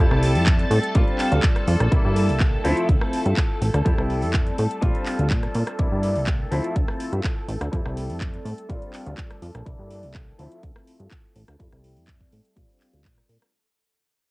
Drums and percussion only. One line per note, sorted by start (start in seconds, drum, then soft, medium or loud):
0.11 cross-stick medium
0.23 open hi-hat loud
0.35 open hi-hat medium
0.46 kick loud
0.46 clap loud
0.46 closed hi-hat medium
0.59 closed hi-hat soft
0.71 open hi-hat loud
0.83 closed hi-hat medium
0.95 kick loud
0.95 closed hi-hat medium
1.08 closed hi-hat soft
1.19 clap medium
1.19 open hi-hat loud
1.32 closed hi-hat medium
1.43 kick loud
1.43 clap loud
1.43 closed hi-hat medium
1.56 cross-stick medium
1.56 closed hi-hat soft
1.68 open hi-hat loud
1.80 cross-stick medium
1.80 closed hi-hat medium
1.92 kick loud
1.92 closed hi-hat medium
2.16 open hi-hat loud
2.29 open hi-hat medium
2.40 kick loud
2.40 clap loud
2.40 closed hi-hat medium
2.65 open hi-hat loud
2.77 closed hi-hat medium
2.89 kick loud
2.89 closed hi-hat medium
3.01 cross-stick medium
3.13 open hi-hat loud
3.26 closed hi-hat medium
3.37 kick loud
3.37 clap loud
3.37 closed hi-hat medium
3.62 open hi-hat loud
3.74 cross-stick medium
3.74 closed hi-hat medium
3.86 kick loud
3.86 closed hi-hat medium
3.98 cross-stick medium
4.10 open hi-hat loud
4.22 open hi-hat medium
4.33 kick loud
4.33 clap loud
4.33 closed hi-hat medium
4.46 closed hi-hat soft
4.58 open hi-hat loud
4.71 closed hi-hat soft
4.82 kick loud
4.82 closed hi-hat medium
4.95 closed hi-hat soft
5.06 clap medium
5.06 open hi-hat loud
5.19 closed hi-hat soft
5.30 kick loud
5.30 clap loud
5.30 closed hi-hat medium
5.43 cross-stick medium
5.43 closed hi-hat soft
5.55 open hi-hat loud
5.67 cross-stick medium
5.67 closed hi-hat soft
5.79 kick loud
5.79 closed hi-hat medium
6.03 open hi-hat loud
6.16 open hi-hat medium
6.27 kick loud
6.27 clap loud
6.27 closed hi-hat medium
6.52 open hi-hat loud
6.64 closed hi-hat medium
6.76 kick loud
6.76 closed hi-hat medium
6.88 cross-stick medium
7.00 open hi-hat loud
7.13 closed hi-hat soft
7.24 kick loud
7.24 clap loud
7.24 closed hi-hat medium
7.48 open hi-hat loud
7.61 cross-stick medium
7.61 closed hi-hat medium
7.73 kick loud
7.73 closed hi-hat medium
7.86 cross-stick medium
7.97 open hi-hat medium
8.10 open hi-hat medium
8.21 kick loud
8.21 clap loud
8.21 closed hi-hat medium
8.34 closed hi-hat soft
8.45 open hi-hat loud
8.58 closed hi-hat soft
8.70 kick loud
8.70 closed hi-hat medium
8.82 closed hi-hat soft
8.93 clap medium
8.93 open hi-hat loud
9.06 closed hi-hat soft
9.17 kick loud
9.17 clap loud
9.17 closed hi-hat medium
9.30 cross-stick medium
9.30 closed hi-hat soft
9.42 open hi-hat medium
9.55 cross-stick medium
9.55 closed hi-hat medium
9.66 kick loud
9.66 closed hi-hat medium
9.90 open hi-hat medium
10.03 open hi-hat medium
10.14 kick loud
10.14 clap loud
10.14 closed hi-hat medium
10.39 open hi-hat medium
10.52 closed hi-hat medium
10.63 kick loud
10.63 closed hi-hat medium
10.76 cross-stick medium
10.87 open hi-hat loud
11.00 closed hi-hat medium
11.11 kick loud
11.11 clap loud
11.11 closed hi-hat medium
11.36 open hi-hat loud
11.48 cross-stick medium
11.48 closed hi-hat medium
11.60 kick loud
11.60 closed hi-hat medium
11.73 cross-stick medium
11.73 closed hi-hat soft
11.84 open hi-hat medium
11.97 open hi-hat medium
12.08 kick loud
12.08 clap loud
12.08 closed hi-hat medium
12.21 kick medium
12.21 closed hi-hat soft
12.33 open hi-hat loud
12.45 closed hi-hat medium
12.57 kick loud
12.57 closed hi-hat medium
12.69 open hi-hat medium
12.81 clap medium
12.81 open hi-hat loud
12.94 closed hi-hat medium
13.05 kick loud
13.05 clap loud
13.05 closed hi-hat medium
13.18 cross-stick medium
13.18 closed hi-hat soft
13.29 open hi-hat loud
13.42 cross-stick medium
13.42 closed hi-hat medium